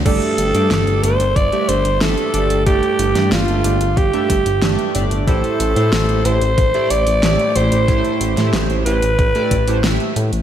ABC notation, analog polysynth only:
X:1
M:4/4
L:1/16
Q:1/4=92
K:Am
V:1 name="Analog polysynth"
[G,,A,DGd]3 [G,,A,DGd]3 [G,,A,DGd] z2 [G,,A,DGe] z2 [G,,A,DGe]2 [G,,A,DGd]2 | [G,,A,DGd]3 [G,,A,DGd]3 [G,,A,DGd] z2 [G,,A,DGe] z2 [G,,A,DGe]2 [A,,A,DGd]2 | [A,,A,EGc]3 [A,,A,EGc]3 [A,,A,EGc] z2 [A,,A,EGd] z2 [A,,A,EGd]2 [A,,A,EGc]2 | [A,,A,EGc]3 [A,,A,EGc]3 [A,,A,EGc] z2 [A,,A,EGd] z [A,,A,EGc] [A,,A,EGe] z3 |]